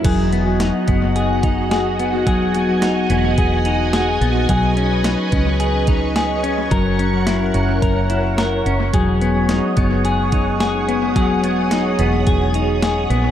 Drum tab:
CC |x-------|--------|--------|--------|
HH |xxxxxxxx|xxxxxxxx|xxxxxxxx|xxxxxxxx|
SD |--o---o-|--o---o-|--o---o-|--o---o-|
BD |o--o-o--|o---o---|o--o-o--|o---o---|

CC |--------|--------|
HH |xxxxxxxx|xxxxxxxx|
SD |--o---o-|--o---o-|
BD |o--o-o--|o---o---|